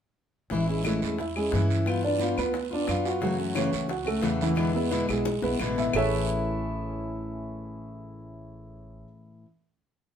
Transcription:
0.50 upright bass A1, steel-string acoustic guitar E3 G#3 C#4 E4, grand piano E3 E4, high bongo, long guiro
0.68 steel-string acoustic guitar G#3 C#4 E4
0.84 steel-string acoustic guitar E3 G#3 C#4 E4, grand piano A3 A4, high bongo, short guiro, claves
1.02 upright bass E2, steel-string acoustic guitar G#3 C#4 E4, short guiro
1.19 grand piano E4 E5, muted steel-string acoustic guitar stroke, high bongo, long guiro
1.36 grand piano G#3 G#4, steel-string acoustic guitar G#3 C#4 E4, claves
1.52 upright bass G2, steel-string acoustic guitar E3 C#4 E4, high bongo, low bongo, short guiro
1.71 short guiro
1.86 steel-string acoustic guitar G3 B3 F4, high bongo, long guiro, claves
2.02 steel-string acoustic guitar B3 F4, grand piano D4 D5, high bongo
2.19 steel-string acoustic guitar G3 B3 F4, high bongo, short guiro
2.37 upright bass D2, grand piano B3 B4, steel-string acoustic guitar B3 F4, high bongo, short guiro, claves
2.54 muted steel-string acoustic guitar stroke, high bongo, long guiro
2.71 steel-string acoustic guitar B3 F4, grand piano D4 D5
2.88 upright bass F#2, steel-string acoustic guitar B3 F4, high bongo, low bongo, short guiro, claves
3.05 grand piano F#4 F#5, high bongo, short guiro
3.21 steel-string acoustic guitar C#3 E3 A3 C#4 F#4, grand piano F#3 F#4, high bongo, long guiro
3.39 steel-string acoustic guitar A3 C#4 F#4
3.55 steel-string acoustic guitar C#3 E3 A3 C#4 F#4, grand piano C#4 C#5, high bongo, short guiro, claves
3.71 upright bass C#2, steel-string acoustic guitar A3 C#4 F#4, short guiro
3.89 grand piano F#4 F#5, muted steel-string acoustic guitar stroke, high bongo, long guiro
4.05 steel-string acoustic guitar A3 C#4 F#4, grand piano A3 A4, claves
4.21 upright bass E2, steel-string acoustic guitar C#3 E3 A3 C#4 F#4, high bongo, low bongo, short guiro
4.41 grand piano E3 E4, short guiro
4.55 steel-string acoustic guitar B2 D3 G#3 B3 E4, high bongo, long guiro, claves
4.74 steel-string acoustic guitar G#3 B3 E4, grand piano B3 B4, high bongo
4.90 steel-string acoustic guitar B2 D3 G#3 B3 E4, high bongo, short guiro
5.08 upright bass B1, steel-string acoustic guitar G#3 B3 E4, grand piano G#3 G#4, high bongo, short guiro, claves
5.25 muted steel-string acoustic guitar stroke, high bongo, long guiro
5.42 upright bass B1, steel-string acoustic guitar G#3 B3 E4, grand piano B3 B4, low bongo
5.59 upright bass A1, steel-string acoustic guitar B2 D3 G#3 B3 E4, low bongo, short guiro, claves
5.76 grand piano E4 E5, low bongo, short guiro
5.93 upright bass A1, steel-string acoustic guitar A2 E3 C#4 E4, grand piano E4 G#4 A4 C#5 E5, low bongo, long guiro, claves

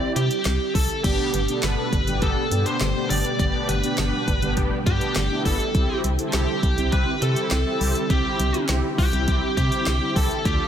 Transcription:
Already playing: string machine D3 G3 C4 E4 G4, analog polysynth C4 E4 G4, lead electric guitar D5
0.16 fm bass C3, lead electric guitar G4, closed hi-hat
0.31 closed hi-hat
0.45 fm bass C2, snare, clap, closed hi-hat
0.75 fm bass C2, lead electric guitar A4, kick, open hi-hat
0.90 closed hi-hat
1.04 fm bass G1, string machine B2 D3 G3 A3 G4, analog polysynth B3 D4 G4, lead electric guitar G4, kick, closed hi-hat, crash
1.34 fm bass G1, closed hi-hat
1.48 analog polysynth B3 D4 A4, closed hi-hat
1.63 fm bass G1, lead electric guitar B4, snare, clap, closed hi-hat
1.93 fm bass G1, kick, closed hi-hat
2.07 fm bass G1, analog polysynth B3 D4 G4, closed hi-hat
2.22 fm bass G1, lead electric guitar A4, kick, closed hi-hat
2.51 fm bass G2, analog polysynth B3 D4 G4, closed hi-hat
2.66 lead electric guitar C5, closed hi-hat
2.81 fm bass G1, snare, clap, closed hi-hat
2.96 analog polysynth B3 D4 G4
3.10 fm bass G1, lead electric guitar D5, open hi-hat
3.25 closed hi-hat
3.39 fm bass G1, analog polysynth B3 D4 G4, lead electric guitar D5, kick, closed hi-hat
3.69 fm bass G1, lead electric guitar B4, closed hi-hat
3.83 analog polysynth B3 D4 G4, closed hi-hat
3.98 fm bass G1, snare, clap, closed hi-hat
4.28 fm bass G1, kick, closed hi-hat
4.42 fm bass G1, analog polysynth B3 D4 G4, closed hi-hat
4.57 fm bass G1, kick, closed hi-hat
4.87 fm bass G2, analog polysynth B3 D4 G4, lead electric guitar G4, kick, closed hi-hat
5.01 closed hi-hat
5.16 fm bass G1, snare, clap, closed hi-hat
5.31 analog polysynth B3 D4 E4
5.45 fm bass G1, lead electric guitar A4, kick, open hi-hat
5.60 closed hi-hat
5.75 fm bass C2, string machine G3 C4 E4, analog polysynth C4 E4 G4, kick, closed hi-hat
6.04 fm bass C2, closed hi-hat
6.19 analog polysynth C4 E4 A4, closed hi-hat
6.33 fm bass C2, lead electric guitar G4, snare, clap, closed hi-hat
6.63 fm bass C2, kick, closed hi-hat
6.78 fm bass C2, analog polysynth C4 E4 G4, closed hi-hat
6.92 fm bass C2, lead electric guitar B4, kick, closed hi-hat
7.22 fm bass C3, analog polysynth C4 E4 G4, lead electric guitar A4, closed hi-hat
7.36 closed hi-hat
7.51 fm bass C2, snare, clap, closed hi-hat
7.66 analog polysynth C4 E4 G4
7.81 fm bass C2, open hi-hat
7.95 closed hi-hat
8.10 fm bass C2, analog polysynth C4 E4 G4, lead electric guitar G4, kick, closed hi-hat
8.39 fm bass C2, closed hi-hat
8.54 analog polysynth C4 E4 G4, closed hi-hat
8.69 fm bass C2, snare, clap, closed hi-hat
8.98 fm bass C2, lead electric guitar G4, kick, open hi-hat
9.13 fm bass C2, analog polysynth C4 E4 G4, closed hi-hat
9.28 fm bass C2, kick, closed hi-hat
9.57 fm bass C3, analog polysynth C4 E4 G4, lead electric guitar G4, kick, closed hi-hat
9.72 closed hi-hat
9.87 fm bass C2, snare, clap, closed hi-hat
10.01 analog polysynth C4 E4 G4
10.16 fm bass C2, lead electric guitar A4, kick, open hi-hat
10.31 closed hi-hat
10.45 fm bass D2, string machine F3 A3 F4 A4, analog polysynth D4 F4 A4, lead electric guitar G4, kick, closed hi-hat

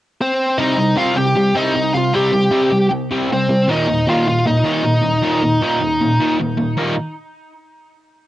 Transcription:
0.21 lead electric guitar C4 C5
0.58 overdriven electric guitar C3 G3 C4, lead electric guitar D#4 D#5
0.77 overdriven electric guitar C3 G3
0.96 overdriven electric guitar C3 G3 C4, lead electric guitar F4 F5
1.16 overdriven electric guitar C3 G3, lead electric guitar G4 G5
1.36 overdriven electric guitar C3 G3
1.55 overdriven electric guitar C3 G3 C4, lead electric guitar D#5
1.59 lead electric guitar D#4
1.75 overdriven electric guitar C3 G3
1.94 overdriven electric guitar C3 G3, lead electric guitar F4 F5
2.13 overdriven electric guitar C3 G3 C4, lead electric guitar G4 G5
2.33 overdriven electric guitar C3 G3
2.51 overdriven electric guitar C3 G3 C4
2.71 overdriven electric guitar C3 G3
2.91 overdriven electric guitar C3 G3
3.11 overdriven electric guitar C3 G3 C4
3.30 overdriven electric guitar C3 G3, lead electric guitar C4 C5
3.49 overdriven electric guitar C3 G3
3.68 overdriven electric guitar D#2 A#2 D#3, lead electric guitar D#4 D#5
3.89 overdriven electric guitar D#2 A#2
4.07 overdriven electric guitar D#2 A#2 D#3, lead electric guitar F4 F5
4.27 overdriven electric guitar D#2 A#2, lead electric guitar F4 F5
4.46 overdriven electric guitar D#2 A#2, lead electric guitar D#4 D#5
4.64 overdriven electric guitar D#2 A#2 D#3
4.84 overdriven electric guitar D#2 A#2
5.03 overdriven electric guitar D#2 A#2
5.23 overdriven electric guitar D#2 A#2 D#3
5.43 overdriven electric guitar D#2 A#2
5.62 overdriven electric guitar D#2 A#2 D#3
5.80 overdriven electric guitar D#2 A#2
6.01 overdriven electric guitar D#2 A#2
6.20 overdriven electric guitar D#2 A#2 D#3
6.40 overdriven electric guitar D#2 A#2
6.57 overdriven electric guitar D#2 A#2
6.77 overdriven electric guitar D#2 A#2 D#3 G3 A#3 D#4

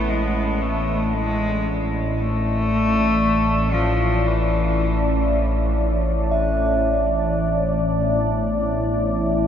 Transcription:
Already playing: synth drone A1, cello A3, ambient pad E4 D5 A5, singing bowl B5
0.09 cello G#3
0.61 cello A3
1.13 cello G#3
2.17 cello A3
3.73 cello F3
4.26 cello E3
6.31 ambient pad A2, singing bowl E5
6.82 ambient pad E4
7.17 ambient pad B3
8.67 ambient pad A4

